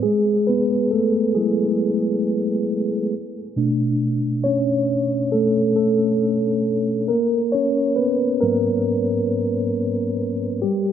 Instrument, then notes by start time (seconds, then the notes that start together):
tine electric piano
0.03 G#3 G#4
0.47 B3 B4
0.91 A3 A4
1.35 F#3 G#3 A3 E4 G#4
3.56 B2 A3 D4
4.44 C#4 C#5
5.32 A3 A4
5.76 A3 A4
7.08 A#3 A#4
7.52 C#4 C#5
7.96 B3 B4
8.41 G#2 F#3 A#3 B3 A#4
10.62 G3 G4